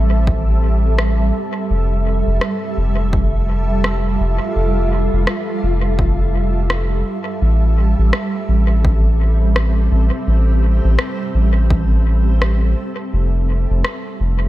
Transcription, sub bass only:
Already playing: A1
1.70 F1
2.27 F1
2.77 F1
4.20 F1
4.56 F1
5.13 F1
5.63 F1
7.42 A1
7.99 A1
8.49 A1
9.92 A1
10.27 A1
10.85 A1
11.35 A1
13.13 F1
13.70 F1
14.20 F1

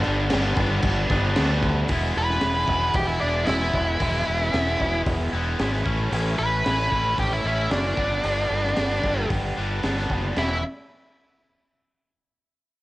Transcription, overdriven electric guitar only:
Already playing: G2 D3
0.04 G3 B3 D4
0.31 G2 D3 G3 B3 D4
0.57 G3 B3 D4
1.10 G3 B3 D4
1.35 D3 G3 B3 D4
1.89 E3 G#3 B3 E4
2.15 G#3 B3 E4
2.41 E3 G#3 B3 E4
2.67 G#3 B3 E4
3.21 G#3 B3 E4
3.47 E3 G#3 B3 E4
4.00 E3 G#3 B3 E4
4.26 G#3 B3 E4
4.52 E3 G#3 B3
4.56 E4
4.80 G#3 B3 E4
5.32 G#3 B3 E4
5.59 E3 G#3 B3 E4
5.85 A2 E3 A3 C#4 E4
6.11 A2 E3 A3 C#4 E4
6.37 C#4 E4
6.42 A3
6.65 A2 E3 A3 C#4 E4
6.92 A3 C#4 E4
7.44 C#4 E4
7.49 A3
7.70 E3 A3 C#4 E4
7.96 D3 G3 B3 D4
8.00 G2
8.24 G2 D3 G3 B3 D4
8.49 G3 B3 D4
8.76 G2 D3 G3 B3
8.81 D4
9.04 G3 B3 D4
9.57 G3 B3 D4
9.83 D3 G3 B3 D4
10.38 E2 B2 E3

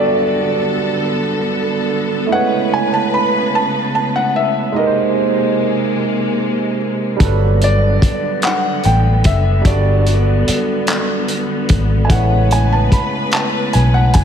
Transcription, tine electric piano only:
Already playing: G3 D4 F#4 A4 D5
2.27 G#3 A3 E4
2.33 B4 C#5
4.72 G#3 D#4
4.76 G4 A#4
4.81 B4
4.87 C5
7.16 G3 D4
7.21 F#3 A4
7.25 B4
9.61 G3 D4
9.65 F#4 A4
9.70 D5
12.07 A3 E4
12.11 G#3 B4
12.15 C#5

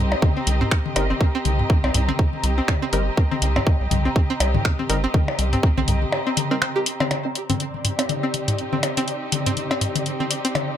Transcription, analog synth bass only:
Already playing: C2
0.47 C2
0.96 G1
1.45 C2
1.84 C2
1.94 C2
2.44 C2
2.93 G1
3.42 C2
3.81 C2
3.91 C2
4.40 C2
4.89 G1
5.39 C2
5.78 C2
5.88 C2

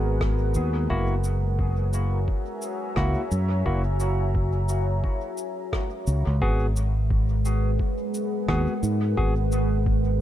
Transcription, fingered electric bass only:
Already playing: G#1
0.56 D#2
0.90 F#1
2.97 C#2
3.31 F#2
3.66 F#1
6.07 C#2
6.27 C#2
6.42 G#1
8.48 D#2
8.83 G#2
9.17 G#1

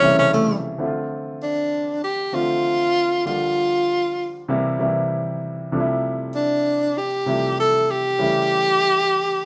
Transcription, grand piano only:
Already playing: C#3 E3 G3 A3 E4
0.01 C3 E3 G3 A3 E4
0.08 C#3
0.78 D3 F3 A3 C4 E4
0.86 F4
2.32 D3 F3 A3 C4 F4
3.25 D3 F3 G3 A#3 F4
4.48 C3 E3 G3 A#3 E4
4.79 C3 E3 G3 A#3 E4
5.72 C3 F3 G3 A3 D4
5.80 E4
7.26 C3 F3 G3 A3 E4
8.19 C#3 E3 G3 A3 E4

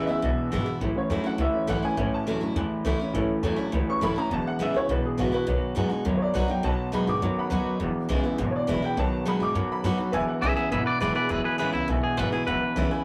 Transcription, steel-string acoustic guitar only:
Already playing: E2
0.07 B3 E4
0.22 B2
0.52 E3 G#3 B3 E4
0.66 B3 E4
0.81 A2
1.10 E3 A3 C#4 E4
1.24 C#4 E4
1.38 E2
1.67 E3 A3 C#4 E4
1.83 C#4 E4
1.97 A2
2.27 E3 A3 C#4 E4
2.41 C#4 E4
2.56 E2
2.85 E3 A3 C#4 E4
3.00 C#4 E4
3.15 A2
3.43 E3 A3 C#4 E4
3.56 C#4 E4
3.72 E2
4.01 E3 A3 C#4 E4
4.16 C#4 E4
4.31 E2
4.59 E3 G#3 B3 E4
4.74 B3 E4
4.89 B2
5.17 E3 G#3 B3 E4
5.32 B3 E4
5.47 B2
5.75 F#3 B3 D#4 F#4
5.89 D#4 F#4
6.05 F#2
6.34 F#3 B3 D#4 F#4
6.48 D#4 F#4
6.63 B2
6.92 F#3 B3 D#4 F#4
7.07 D#4 F#4
7.22 F#2
7.50 F#3 B3 D#4 F#4
7.80 E2
8.09 E3 G#3 B3 E4
8.23 B3 E4
8.38 B2
8.67 E3 G#3 B3 E4
8.82 B3 E4
8.97 B2
9.25 F#3 B3 D#4 F#4
9.40 D#4 F#4
9.55 F#2
9.84 F#3 B3 D#4 F#4
9.98 D#4 F#4
10.13 E2
10.42 E3 G#3 B3 E4
10.57 B3 E4
10.72 B2
11.00 E3 G#3 B3 E4
11.15 B3 E4
11.29 E2
11.58 E3 G#3 B3 E4
11.73 B3 E4
11.88 B2
12.17 E3 G#3 B3 E4
12.32 B3 E4
12.47 E2
12.76 E3 G#3 B3 E4
12.91 B3 E4

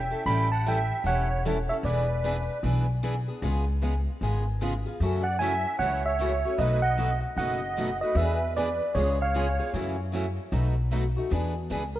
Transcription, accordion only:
Already playing: E5
0.26 G5
0.52 F#5
0.68 E5
1.05 C#5
1.67 C#5
1.83 B4
5.21 D5
5.39 E5
5.78 C#5
6.04 C#5
6.57 B4
6.82 D#5
7.37 D#5
8.02 B4
8.17 B4
8.55 B4
8.93 G#4
9.19 C#5

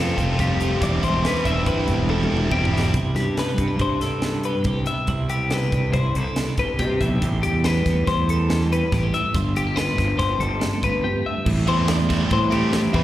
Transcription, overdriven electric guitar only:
Already playing: F3 A3 C4
0.00 F4
0.17 A3 C4 F4
0.38 F3 A3 C4 F4
0.61 A3 C4 F4
0.80 E3 G3 C4 E4
1.02 G3 C4 E4
1.23 E3 G3 C4 E4
1.44 G3 C4 E4
2.09 E3 G3 C4 E4
2.30 G3 C4 E4
2.52 E3 G3 C4 E4
2.72 G3 C4 E4
11.67 E3 A3 C4 E4
12.09 E3 A3 C4 E4
12.51 E3 A3 C4 E4
12.93 E3 A3 C4 E4

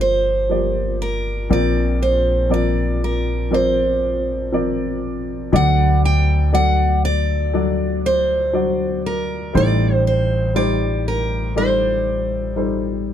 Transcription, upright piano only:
Already playing: G1 G2 F3 A#3 G4 C5 D5
0.49 F3 A#3 G4 D5
1.49 A#1 A#2 F3 C4 A#4 D5
2.49 F3 C4 A#4 D5
3.51 F3 C4 A#4 D5
4.52 F3 C4 A#4 D5
5.52 D2 D3 F#3 D4 A4 D5
6.52 F#3 D4 A4 D5
7.54 F#3 D4 A4 D5
8.53 F#3 D4 F#4 D5
9.53 A1 A2 G3 D#4 A4 C5
10.54 G3 D#4 G4 C5
11.56 G3 D#4 A4 D5
12.56 G3 D#4 A4 C5

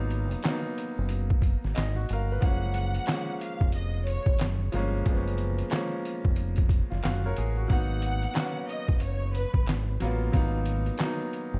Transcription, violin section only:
2.43 F#5
3.41 F5
3.75 D#5
4.07 C#5
7.70 F#5
8.68 D#5
9.02 C#5
9.35 B4

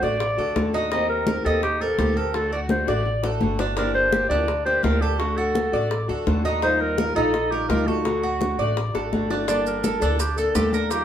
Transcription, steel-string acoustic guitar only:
0.01 A3 D4 F#4
0.20 muted steel-string acoustic guitar stroke
0.37 A3 D4 F#4
0.55 D3 A3 D4 F#4
0.73 A3 D4 F#4
0.91 D#3 A#3 C4 G4
1.26 D#3 A#3 C4 G4
1.44 A#3 C4 G4
1.63 muted steel-string acoustic guitar stroke
1.80 A#3 C4 G4
1.98 D#3 A#3 C4 G4
2.16 A#3 C4 G4
2.33 D3 A3 D4 F#4
2.69 D3 A3 D4 F#4
2.87 A3 D4 F#4
3.06 muted steel-string acoustic guitar stroke
3.23 A3 D4 F#4
3.40 D3 A3 D4 F#4
3.59 A3 D4 F#4
3.76 D3 F3 A#3 D4 G4
4.11 F3 A#3 D4 G4
4.29 F3 A#3 D4 G4
4.48 muted steel-string acoustic guitar stroke
4.65 A#3 D4 G4
4.83 D3 F3 A#3 D4 G4
5.01 A#3 D4 G4
5.19 D3 A3 D4 F#4
5.55 D3 A3 D4 F#4
5.72 A3 D4 F#4
5.90 muted steel-string acoustic guitar stroke
6.08 A3 D4 F#4
6.26 D3 A3 D4 F#4
6.44 A3 D4 F#4
6.61 D#3 G3 D#4 F4
6.97 D#3 G3 D#4 F4
7.15 G3 D#4 F4
7.33 muted steel-string acoustic guitar stroke
7.50 G3 D#4 F4
7.68 D#3 G3 D#4 F4
7.87 G3 D#4 F4
8.04 D3 A3 D4 F#4
8.41 D3 A3 D4 F#4
8.59 A3 D4 F#4
8.76 muted steel-string acoustic guitar stroke
8.94 A3 D4 F#4
9.12 D3 A3 D4 F#4
9.30 A3 D4 F#4
9.47 D3 G3 A#3 D4 A4
9.83 G3 A#3 D4 A4
10.00 G3 A#3 D4 A4
10.18 muted steel-string acoustic guitar stroke
10.36 A#3 D4 A4
10.54 D3 G3 A#3 D4 A4
10.73 A#3 D4 A4
10.91 D#3 G3 D#4 F4

